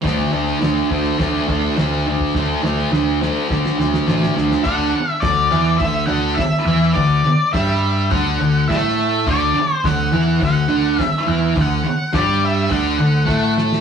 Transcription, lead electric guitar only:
0, 0, Header, 1, 2, 480
1, 0, Start_track
1, 0, Key_signature, 2, "major"
1, 0, Tempo, 575816
1, 33, Time_signature, 4, 2, 24, 8
1, 11509, End_track
2, 0, Start_track
2, 0, Title_t, "Lead electric guitar"
2, 0, Program_c, 0, 29
2, 3868, Note_on_c, 0, 78, 102
2, 4259, Note_off_c, 0, 78, 0
2, 4259, Note_on_c, 0, 76, 102
2, 4337, Note_on_c, 0, 74, 80
2, 4370, Note_off_c, 0, 76, 0
2, 4814, Note_off_c, 0, 74, 0
2, 4817, Note_on_c, 0, 76, 93
2, 5050, Note_on_c, 0, 78, 90
2, 5053, Note_off_c, 0, 76, 0
2, 5289, Note_off_c, 0, 78, 0
2, 5290, Note_on_c, 0, 76, 89
2, 5754, Note_off_c, 0, 76, 0
2, 5784, Note_on_c, 0, 74, 95
2, 6273, Note_off_c, 0, 74, 0
2, 6277, Note_on_c, 0, 76, 87
2, 6759, Note_on_c, 0, 78, 107
2, 6774, Note_off_c, 0, 76, 0
2, 7233, Note_on_c, 0, 76, 85
2, 7254, Note_off_c, 0, 78, 0
2, 7731, Note_off_c, 0, 76, 0
2, 7743, Note_on_c, 0, 74, 93
2, 8118, Note_off_c, 0, 74, 0
2, 8118, Note_on_c, 0, 72, 93
2, 8214, Note_on_c, 0, 78, 88
2, 8225, Note_off_c, 0, 72, 0
2, 8652, Note_off_c, 0, 78, 0
2, 8709, Note_on_c, 0, 78, 89
2, 9193, Note_off_c, 0, 78, 0
2, 9193, Note_on_c, 0, 76, 89
2, 9378, Note_off_c, 0, 76, 0
2, 9680, Note_on_c, 0, 78, 97
2, 10126, Note_on_c, 0, 74, 83
2, 10150, Note_off_c, 0, 78, 0
2, 10343, Note_off_c, 0, 74, 0
2, 10379, Note_on_c, 0, 76, 91
2, 10589, Note_off_c, 0, 76, 0
2, 10601, Note_on_c, 0, 78, 87
2, 11280, Note_off_c, 0, 78, 0
2, 11509, End_track
0, 0, End_of_file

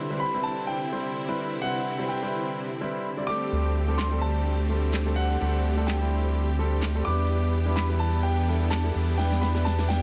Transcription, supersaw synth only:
0, 0, Header, 1, 2, 480
1, 0, Start_track
1, 0, Tempo, 472441
1, 1657, Time_signature, 4, 2, 24, 8
1, 10182, End_track
2, 0, Start_track
2, 0, Title_t, "Supersaw synth"
2, 0, Program_c, 0, 81
2, 0, Note_on_c, 0, 48, 85
2, 0, Note_on_c, 0, 50, 82
2, 0, Note_on_c, 0, 60, 80
2, 0, Note_on_c, 0, 64, 97
2, 3297, Note_off_c, 0, 50, 0
2, 3301, Note_off_c, 0, 48, 0
2, 3301, Note_off_c, 0, 64, 0
2, 3302, Note_off_c, 0, 60, 0
2, 3340, Note_on_c, 0, 50, 77
2, 3340, Note_on_c, 0, 57, 74
2, 3340, Note_on_c, 0, 60, 71
2, 3340, Note_on_c, 0, 67, 86
2, 7140, Note_off_c, 0, 50, 0
2, 7140, Note_off_c, 0, 57, 0
2, 7140, Note_off_c, 0, 60, 0
2, 7179, Note_on_c, 0, 52, 78
2, 7179, Note_on_c, 0, 59, 73
2, 7179, Note_on_c, 0, 62, 72
2, 10182, Note_off_c, 0, 52, 0
2, 10182, Note_off_c, 0, 59, 0
2, 10182, Note_off_c, 0, 62, 0
2, 10182, Note_off_c, 0, 67, 0
2, 10182, End_track
0, 0, End_of_file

